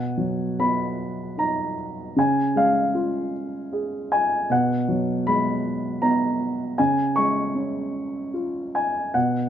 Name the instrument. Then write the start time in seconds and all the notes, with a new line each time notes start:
grand piano
Already playing: B2 F#5
0.18 F#3
0.59 B3 B5
1.38 D#4 A#5
2.16 C#3 G#5
2.55 G#3 F5
2.95 F4
3.73 G#4
4.12 G#5
4.50 B2 F#5
4.89 F#3
5.27 G#3 B5
6.02 B3 A#5
6.78 C#3 G#5
7.16 G#3 C#6
7.55 C#4
8.34 F4
8.75 G#5
9.14 B2 F#5